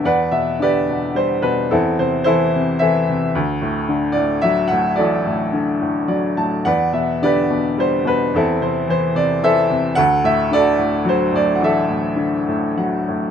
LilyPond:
<<
  \new Staff \with { instrumentName = "Upright piano" } { \time 3/4 \key d \mixolydian \tempo 4 = 109 << { fis''8 e''8 d''4 c''8 b'8 | a'8 c''8 c''4 e''8. r16 | r4. d''8 e''8 fis''8 | d''2 d''8 a''8 |
fis''8 e''8 d''4 c''8 b'8 | a'8 c''8 c''8 d''8 e''8. r16 | fis''8 e''8 d''4 c''8 d''16. fis''32 | e''2 fis''4 | } \\ { <b' d''>4 <g' b'>4. r8 | <c' e'>4 <e' a'>4 <a' c''>4 | r2. | <fis' a'>2 r4 |
<b' d''>4 <g' b'>4. r8 | <c' e'>4. r8 <a' c''>4 | a'4 <fis' a'>4. r8 | a'2 r4 | } >> }
  \new Staff \with { instrumentName = "Upright piano" } { \clef bass \time 3/4 \key d \mixolydian e,8 b,8 d8 b,8 g8 b,8 | e,8 c8 e8 c8 e8 c8 | d,8 a,8 d8 a,8 fis8 a,8 | a,,8 a,8 d8 a,8 fis8 a,8 |
e,8 b,8 d8 b,8 g8 b,8 | e,8 c8 e8 c8 e8 c8 | d,8 a,8 d8 a,8 fis8 a,8 | a,,8 a,8 d8 a,8 fis8 a,8 | }
>>